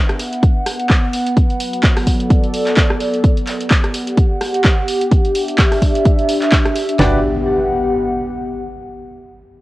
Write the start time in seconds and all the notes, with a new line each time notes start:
Already playing: B3 D4 B4 E5 F#5
0.09 cross-stick, closed hi-hat
0.19 open hi-hat
0.33 closed hi-hat
0.43 kick, closed hi-hat
0.66 cross-stick, open hi-hat
0.79 closed hi-hat
0.90 kick, clap, closed hi-hat
1.13 open hi-hat
1.26 closed hi-hat
1.36 F#3, kick, closed hi-hat
1.50 closed hi-hat
1.60 open hi-hat
1.73 closed hi-hat
1.83 kick, clap, closed hi-hat
1.90 A4
1.97 cross-stick, open hi-hat
2.04 D5, kick, open hi-hat
2.20 closed hi-hat
2.30 kick, closed hi-hat
2.44 closed hi-hat
2.54 open hi-hat
2.67 clap, closed hi-hat
2.77 kick, clap, closed hi-hat
2.90 cross-stick
3.01 open hi-hat
3.14 closed hi-hat
3.24 kick, closed hi-hat
3.37 closed hi-hat
3.44 G4, clap, open hi-hat
3.61 closed hi-hat
3.71 F#5, kick, clap, closed hi-hat
3.84 cross-stick, closed hi-hat
3.94 open hi-hat
4.08 closed hi-hat
4.18 kick, closed hi-hat
4.41 cross-stick, open hi-hat
4.54 closed hi-hat
4.65 kick, clap, closed hi-hat
4.88 D4, open hi-hat
5.01 closed hi-hat
5.10 E5, kick, closed hi-hat
5.25 closed hi-hat
5.35 open hi-hat
5.48 closed hi-hat
5.58 kick, clap, closed hi-hat
5.72 cross-stick, open hi-hat
5.82 kick, open hi-hat
5.95 closed hi-hat
6.05 kick, closed hi-hat
6.19 closed hi-hat
6.29 open hi-hat
6.42 clap, closed hi-hat
6.52 kick, clap, closed hi-hat
6.65 cross-stick, closed hi-hat
6.76 open hi-hat
6.89 closed hi-hat
6.99 G1 B3 D4 F#4 G4 B4 D5, snare, impact
7.07 G4
7.14 F#5